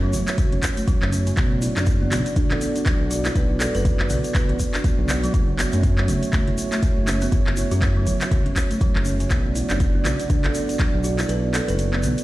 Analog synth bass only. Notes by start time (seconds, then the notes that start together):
Already playing: F#2
0.13 F#1
0.53 E1
1.02 F#1
1.37 B1
1.76 F#1
2.11 B1
2.51 A1
3.00 B1
3.35 B1
3.75 F#1
4.10 B1
4.49 A1
4.99 B1
5.34 F#1
5.73 F#2
6.08 F#1
6.47 E1
6.97 F#1
7.32 F#1
7.71 F#2
8.06 F#1
8.46 E1
8.95 F#1
9.31 B1
9.70 F#1
10.05 B1
10.44 A1
10.94 B1
11.29 B1
11.68 F#1
12.03 B1